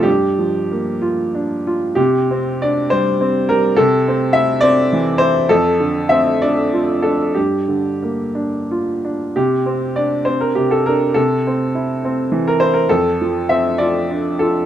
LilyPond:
\new Staff \with { instrumentName = "Grand piano" } { \time 6/8 \key c \mixolydian \tempo 4. = 66 << { g'4. r4. | g'4 d''8 c''4 bes'8 | a'4 e''8 d''4 c''8 | a'4 e''8 d''4 a'8 |
g'4. r4. | g'4 d''8 c''16 bes'16 g'16 a'16 bes'8 | a'2~ a'16 bes'16 c''16 bes'16 | a'4 e''8 d''4 a'8 | } \\ { g,8 f8 bes8 f'8 d'8 f'8 | c8 c'8 d'8 g8 c'8 g8 | c8 c'8 e'8 c'8 e8 e'8 | f,8 d8 c'8 d'8 f'8 d'8 |
g,8 d8 bes8 d'8 f'8 d'8 | c8 c'8 d'8 c'8 c8 d'8 | c8 c'8 e'8 c'8 e8 e'8 | f,8 f8 c'8 f'8 d'8 f'8 | } >> }